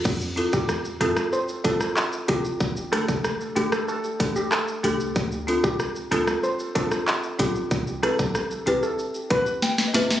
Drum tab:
CC |x---------------|----------------|----------------|----------------|
HH |--x---x---x---x-|--x---x---x---x-|--x---x---x---x-|--x---x---x---x-|
SH |xxxxxxxxxxxxxxxx|xxxxxxxxxxxxxxxx|xxxxxxxxxxxxxxxx|xxxxxxxxxxxxxxxx|
CP |------------x---|------------x---|------------x---|----------------|
SD |----r-rr---r----|--r-r--r--------|----r-rr---r----|--r-r-------oooo|
BD |o--o------o---o-|o--o------o-----|o--o------o---o-|o--o------o-----|